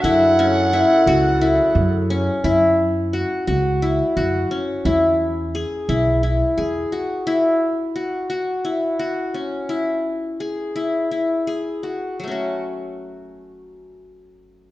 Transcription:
X:1
M:7/8
L:1/8
Q:1/4=87
K:F#m
V:1 name="Soprano saxophone"
f6 z | z6 z | z6 z | z6 z |
z6 z | z6 z |]
V:2 name="Woodwind section"
[F,EGA]6- [F,EGA] | z6 z | z6 z | z6 z |
z6 z | z6 z |]
V:3 name="Qanun"
E C E F E2 C | E2 F F E F C | E2 G E E G F | E2 F F E F C |
E2 G E E G F | [F,A,CF]6- [F,A,CF] |]
V:4 name="Upright bass" clef=bass
F,,3 C,,2 F,,2 | F,,3 C,,2 F,, z | E,,3 B,,,2 E,, z | z6 z |
z6 z | z6 z |]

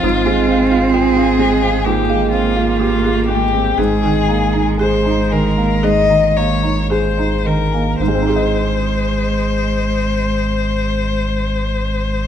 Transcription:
X:1
M:4/4
L:1/16
Q:1/4=57
K:Ab
V:1 name="Marimba"
F c f f F f c f F f f f F A A c | A a b b A b a b A b b b A e e a | z16 |]
V:2 name="Violin"
F4 A4 G2 F2 F2 G2 | A4 c2 B2 e2 d2 c2 B2 | c16 |]
V:3 name="Felt piano"
A,, A, C F g F A, C A,, A, C F G F A, C | A,, E, B, E A E E, B, A,, E, B, E A E E, B, | [A,,A,CEAe]16 |]
V:4 name="Cello"
C8 B,8 | A,12- A,2 z2 | A,16 |]
V:5 name="Sub bass" clef=bass
A,,,16 | A,,,16 | A,,,16 |]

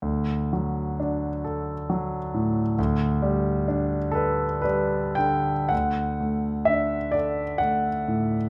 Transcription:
X:1
M:3/4
L:1/8
Q:1/4=65
K:D
V:1 name="Grand piano"
z6 | z3 A B g | f2 e d f2 |]
V:2 name="Grand piano" clef=bass
D,, F, D A F, A,, | D,, G, D B G, D, | D,, A, D A A, A,, |]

